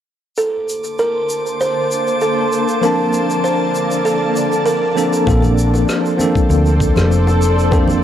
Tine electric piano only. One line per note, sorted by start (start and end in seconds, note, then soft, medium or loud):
2.81 4.91 F3 medium
2.81 4.91 A#3 medium
2.81 4.92 C4 medium
2.81 4.92 D4 medium
2.85 4.93 A5 loud
4.95 5.21 F3 medium
4.95 5.21 A#3 medium
4.95 5.22 C4 medium
4.95 5.22 D4 medium
4.95 5.22 A4 medium
5.26 6.15 F3 medium
5.26 6.16 A#3 medium
5.26 6.16 C4 medium
5.26 6.17 D4 medium
5.26 6.17 A4 medium
6.17 7.68 F3 medium
6.17 7.68 A#3 medium
6.17 7.69 C4 medium
6.17 7.69 D4 medium
6.17 7.70 A4 medium
7.71 8.04 F3 medium
7.71 8.04 A#3 medium
7.71 8.04 C4 medium
7.71 8.04 D4 medium
7.71 8.04 A4 medium